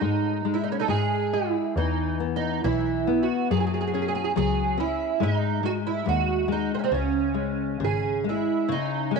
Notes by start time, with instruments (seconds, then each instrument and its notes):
Already playing: twelve-string acoustic guitar D#4
0.01 double bass G#2, nylon-string guitar G#3
0.45 nylon-string guitar G#3
0.54 twelve-string acoustic guitar E4
0.64 twelve-string acoustic guitar D#4
0.72 twelve-string acoustic guitar C#4
0.79 twelve-string acoustic guitar D#4 A4
0.88 double bass G#2, nylon-string guitar G#3, twelve-string acoustic guitar G#4
1.33 twelve-string acoustic guitar E4, nylon-string guitar D#5
1.76 double bass E2, nylon-string guitar E3, twelve-string acoustic guitar D#4
2.20 nylon-string guitar B3
2.36 twelve-string acoustic guitar D#4
2.64 double bass B1, nylon-string guitar E3, twelve-string acoustic guitar E4
3.07 nylon-string guitar B3
3.23 twelve-string acoustic guitar F#4
3.51 double bass F#2, nylon-string guitar F#3, twelve-string acoustic guitar G#4
3.60 twelve-string acoustic guitar G#4
3.67 twelve-string acoustic guitar G#4
3.74 twelve-string acoustic guitar G#4
3.81 twelve-string acoustic guitar G#4
3.87 twelve-string acoustic guitar G#4
3.94 nylon-string guitar C#4, twelve-string acoustic guitar G#4
4.02 twelve-string acoustic guitar G#4
4.08 twelve-string acoustic guitar G#4
4.15 twelve-string acoustic guitar G#4
4.24 twelve-string acoustic guitar G#4
4.36 double bass C#2, nylon-string guitar F#3, twelve-string acoustic guitar G#4
4.78 nylon-string guitar C#4, twelve-string acoustic guitar E4
5.20 double bass G#2, nylon-string guitar G#3, twelve-string acoustic guitar D#4
5.63 nylon-string guitar G#3, twelve-string acoustic guitar F#4
5.87 twelve-string acoustic guitar E4
6.06 double bass D#2, nylon-string guitar G#3, twelve-string acoustic guitar F#4
6.48 nylon-string guitar G#3
6.52 twelve-string acoustic guitar D#4
6.75 twelve-string acoustic guitar C4
6.79 twelve-string acoustic guitar C#4
6.84 twelve-string acoustic guitar C4
6.91 double bass C#2, nylon-string guitar C#3, twelve-string acoustic guitar C#4
7.34 nylon-string guitar G#3
7.80 double bass G#1, nylon-string guitar C#3
7.84 twelve-string acoustic guitar G#4
8.24 nylon-string guitar G#3
8.29 twelve-string acoustic guitar E4
8.69 nylon-string guitar C#3, twelve-string acoustic guitar D#4
9.11 nylon-string guitar G#3
9.16 twelve-string acoustic guitar C#4